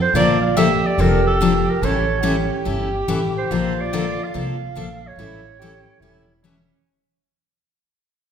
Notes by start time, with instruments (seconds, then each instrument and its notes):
0.02 clarinet C5
0.14 upright bass A#1, steel-string acoustic guitar D3 F3 A#3 D4 A4, soprano saxophone F4, clarinet D5
0.42 clarinet F5
0.57 steel-string acoustic guitar D3 F3 A#3 D4 A4, soprano saxophone G4, clarinet E5
0.86 clarinet D5
0.98 upright bass F1, steel-string acoustic guitar D3 F3 A#3 D4 A4, clarinet A#4
1.27 clarinet A4
1.41 steel-string acoustic guitar D3 F3 A#3 D4 A4
1.70 clarinet A#4
1.82 upright bass A1, steel-string acoustic guitar E3 G3 C#4 E4 A4, soprano saxophone A4, clarinet C#5
2.20 steel-string acoustic guitar E3 G3 C#4 E4 A4, soprano saxophone F#4
2.26 soprano saxophone G4
2.65 upright bass G1, steel-string acoustic guitar E3 G3 C#4 E4 A4
3.08 upright bass A1, steel-string acoustic guitar E3 G3 C#4 E4 A4
3.38 clarinet C5
3.51 upright bass A#1, steel-string acoustic guitar D3 F3 A#3 D4 A4, soprano saxophone F4
3.81 clarinet D5
3.93 steel-string acoustic guitar D3 F3 A#3 D4 A4
4.24 clarinet F5
4.34 upright bass C2, steel-string acoustic guitar D3 F3 A#3 D4 A4
4.75 upright bass A#1, steel-string acoustic guitar D3 F3 A#3 D4 A4
5.07 clarinet C#5
5.16 upright bass A1, steel-string acoustic guitar E3 G3 C#4 E4 A4, soprano saxophone E4
5.59 steel-string acoustic guitar E3 G3 C#4 E4 A4, soprano saxophone G4
6.00 upright bass E1, steel-string acoustic guitar E3 G3 C#4 E4 A4, soprano saxophone E4
6.43 steel-string acoustic guitar E3 G3 C#4 E4 A4, soprano saxophone C#4